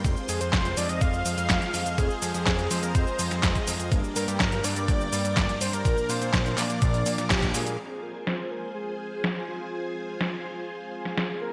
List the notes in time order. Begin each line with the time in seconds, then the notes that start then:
Already playing: C6
0.04 F1 G#3 C4 F4 G#4 C5 F5, kick, closed hi-hat, cabasa
0.17 cabasa
0.29 F2 G#4, open hi-hat, cabasa
0.41 F2 C5, closed hi-hat, cabasa
0.53 F1 C5, kick, snare, clap, closed hi-hat, cabasa
0.65 closed hi-hat, cabasa
0.77 F2 G#3 C4 F4 D5 D#5, open hi-hat, cabasa
0.89 F2 D#5, closed hi-hat, cabasa
1.01 F1 F5, kick, closed hi-hat, cabasa
1.14 cabasa
1.26 F2, open hi-hat, cabasa
1.38 F2, closed hi-hat, cabasa
1.50 F1, kick, snare, clap, closed hi-hat, cabasa
1.62 closed hi-hat, cabasa
1.74 F2, open hi-hat, cabasa
1.86 F2, closed hi-hat, cabasa
1.98 F1 G#3 C4 F4 G#4 C5 A#5, kick, closed hi-hat, cabasa
2.10 cabasa
2.22 F2, open hi-hat, cabasa
2.34 F2, closed hi-hat, cabasa
2.46 F1 G#4, kick, snare, clap, closed hi-hat, cabasa
2.59 closed hi-hat, cabasa
2.71 F2 G#3 C4 F4 C5 D#5, open hi-hat, cabasa
2.83 F2 A#4, closed hi-hat, cabasa
2.95 F1 C5, kick, closed hi-hat, cabasa
3.07 cabasa
3.19 F2, open hi-hat, cabasa
3.31 F2, snare, closed hi-hat, cabasa
3.43 F1, kick, snare, clap, closed hi-hat, cabasa
3.55 kick, closed hi-hat, cabasa
3.67 F2, open hi-hat, cabasa
3.80 F2, closed hi-hat, cabasa
3.92 G1 G2 G3 A#3 D4 A#4 D5 G5 D6, kick, closed hi-hat, cabasa
4.04 cabasa
4.16 G2 A#4, open hi-hat, cabasa
4.28 G2 G4, closed hi-hat, cabasa
4.40 G1 A#4, kick, snare, clap, closed hi-hat, cabasa
4.52 closed hi-hat, cabasa
4.64 G2 G3 A#3 D4 D5, open hi-hat, cabasa
4.76 G2, closed hi-hat, cabasa
4.88 G1, kick, closed hi-hat, cabasa
5.01 cabasa
5.12 G2, open hi-hat, cabasa
5.24 G2, closed hi-hat, cabasa
5.37 G1 D5, kick, snare, clap, closed hi-hat, cabasa
5.49 closed hi-hat, cabasa
5.61 G2 C5, open hi-hat, cabasa
5.73 G2 A#4, closed hi-hat, cabasa
5.85 A#1 A#2 F3 A#3 D4 A#4 F5 D6, kick, closed hi-hat, cabasa
5.98 cabasa
6.09 A#2 C5, open hi-hat, cabasa
6.21 A#2, closed hi-hat, cabasa
6.34 A#1, kick, snare, clap, closed hi-hat, cabasa
6.46 closed hi-hat, cabasa
6.58 A#2 F3 A#3 D4 D5, clap, open hi-hat, cabasa
6.70 A#2, closed hi-hat, cabasa
6.82 A#1, kick, closed hi-hat, cabasa
6.94 closed hi-hat, cabasa
7.06 A#2, open hi-hat, cabasa
7.18 A#2, snare, closed hi-hat, cabasa
7.30 A#1 G4, kick, snare, clap, closed hi-hat, cabasa
7.42 kick, closed hi-hat, cabasa
7.54 A#2 F3 A#3 D4 G#4 A#4, open hi-hat, cabasa
7.67 A#2, closed hi-hat, cabasa
7.79 F4 G#4 C5 G#5
8.03 A#4
8.27 C5, snare
8.51 A#4
8.75 G#4
9.24 snare
9.48 F4
10.21 snare
11.05 snare
11.18 G#4, snare
11.42 A#4